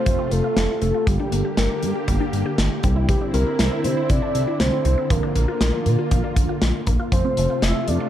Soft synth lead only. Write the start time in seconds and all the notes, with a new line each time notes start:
Already playing: C5
0.32 A4
0.82 A4
1.07 G4
1.57 A#4
3.09 G4
3.34 A#4
3.84 C5
4.09 D5
4.60 C5
5.10 A#4
7.12 C5
7.63 E5
7.88 D5